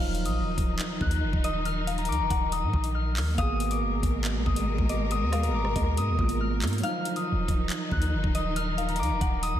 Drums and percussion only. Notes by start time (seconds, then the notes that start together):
0.15 closed hi-hat
0.26 closed hi-hat
0.58 kick, closed hi-hat
0.79 clap, closed hi-hat
1.01 kick
1.11 closed hi-hat
1.33 kick
1.44 closed hi-hat
1.65 closed hi-hat
1.87 closed hi-hat
1.98 closed hi-hat
2.05 closed hi-hat
2.12 closed hi-hat
2.30 kick, closed hi-hat
2.52 closed hi-hat
2.74 kick
2.84 closed hi-hat
3.17 clap, open hi-hat
3.38 kick, closed hi-hat
3.60 closed hi-hat
3.71 closed hi-hat
4.03 kick, closed hi-hat
4.25 clap, closed hi-hat
4.46 kick
4.56 closed hi-hat
4.78 kick
4.89 closed hi-hat
5.11 closed hi-hat
5.32 cross-stick, closed hi-hat
5.43 closed hi-hat
5.65 cross-stick
5.76 kick, closed hi-hat
5.97 closed hi-hat
6.19 kick
6.29 closed hi-hat
6.62 clap, closed hi-hat
6.67 closed hi-hat
6.73 closed hi-hat
6.78 closed hi-hat
6.83 closed hi-hat
7.05 closed hi-hat
7.16 closed hi-hat
7.48 kick, closed hi-hat
7.70 clap, closed hi-hat
7.92 kick
8.02 closed hi-hat
8.24 kick
8.35 closed hi-hat
8.56 closed hi-hat
8.78 closed hi-hat
8.89 closed hi-hat
8.96 closed hi-hat
9.03 closed hi-hat
9.21 kick, closed hi-hat
9.43 closed hi-hat